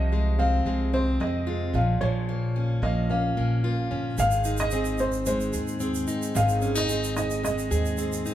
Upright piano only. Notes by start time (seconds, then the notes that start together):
Already playing: D#5
0.39 F5
0.94 C5
1.21 D#5
1.75 F5
2.01 C#5
2.83 D#5
3.10 F5
4.20 F5
4.60 D#5
5.00 C5
5.27 C5
6.36 F5
6.78 D#5
7.17 D#5
7.45 D#5